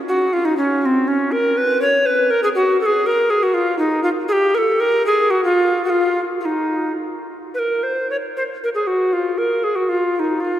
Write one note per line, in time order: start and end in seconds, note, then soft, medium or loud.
0.08 0.35 F#4 medium
0.33 0.47 F4 medium
0.45 0.56 D#4 medium
0.57 0.82 C#4 medium
0.82 1.09 C4 medium
0.82 0.86 C#4 medium
1.08 1.33 C#4 medium
1.32 1.59 A#4 medium
1.57 1.81 B4 medium
1.82 2.08 C#5 medium
2.06 2.32 B4 medium
2.30 2.43 A#4 loud
2.43 2.49 G#4 medium
2.55 2.80 F#4 medium
2.81 2.87 A4 medium
2.86 3.08 G#4 medium
3.06 3.32 A#4 medium
3.30 3.45 G#4 medium
3.43 3.55 F#4 medium
3.54 3.78 F4 medium
3.79 4.03 D#4 medium
4.03 4.09 F4 medium
4.28 4.33 G#4 medium
4.32 4.56 G4 loud
4.55 4.82 A4 medium
4.55 4.59 A#4 medium
4.80 5.05 A#4 medium
5.06 5.32 G#4 medium
5.30 5.44 F#4 medium
5.44 5.84 F4 medium
5.85 5.91 F#4 medium
5.90 6.20 F4 medium
6.41 6.46 F4 medium
6.45 6.92 D#4 medium
7.54 7.60 B4 medium
7.59 7.85 A#4 medium
7.83 8.10 C5 medium
8.10 8.16 C#5 medium
8.37 8.43 C5 medium
8.64 8.69 A#4 medium
8.75 8.88 G#4 medium
8.87 9.14 F#4 medium
9.13 9.40 F4 medium
9.38 9.65 A#4 medium
9.64 9.77 G#4 medium
9.76 9.90 F#4 medium
9.89 10.16 F4 medium
10.16 10.42 D#4 medium
10.16 10.21 F4 medium
10.40 10.60 F4 medium